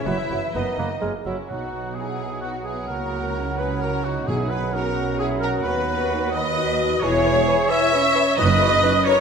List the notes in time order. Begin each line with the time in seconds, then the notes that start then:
0.05 F#1 F#2 F#3 B3 E4 B4 E5
0.10 E3
0.29 F#1 F#2 F#3 B3 B4
0.54 F#1 F#2 D#3 F#3 B3 D#4 B4 D#5
0.78 F#1 F#2 F#3 A#3 B3 B4
1.01 F#1 F#2 F#3 G#3 A#3 A#4
1.25 F#1 F#2 F#3 A#3 C#4 E4
1.48 B1 B2 F#3 D#4 F#4 F#5
1.95 E4 G#4
2.41 B3 D#4 F#4
2.63 E4 G#4
2.86 C#2 C#3 E4 F#4 A#4
2.90 A#3
3.38 C#4
3.57 G#4 B4
3.80 F#4 A#4
4.03 D#4 F#4
4.26 B1 B2 F#3 D#4 E4 G#4 F#5
4.48 G#4 B4
4.72 C#4 F#4 A#4
5.17 E4 G#4
5.40 F#4 A#4
5.62 D#2 B3 F#4 B4
6.12 D#4
6.32 B4 D#5
6.57 F#4
7.00 E1 E2 E3 E4 G#4 C#5 G#5
7.25 E3 E4 G#5
7.47 E3 E4 G#5
7.69 E3 E4 C#5 E5 G#5
7.92 E3 C#4 E4 G#5
8.15 E3 E4 G#5
8.37 F#1 F#2 E3 D#4 F#4 B4 D#5 A#5
8.59 E3 F#4 A#5
8.82 E3 C#4 F#4 A#5
9.05 E3 F#4 A#4 C#5 A#5